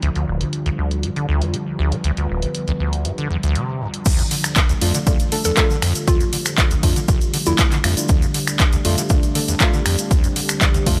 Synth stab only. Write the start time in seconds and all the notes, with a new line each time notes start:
4.81 A3 D4 F4
5.07 A3 D4 F4
5.32 A3 D4 A4
5.57 A3 D4 F4
6.83 A3 D4 F4
7.47 A3 D4 F4
7.84 A3 D4 F4
7.97 A3 D4 F4
8.85 A3 D4 F4
9.10 A3 D4 F4
9.35 A3 D4 A4
9.60 A3 D4 F4
10.86 A3 D4 F4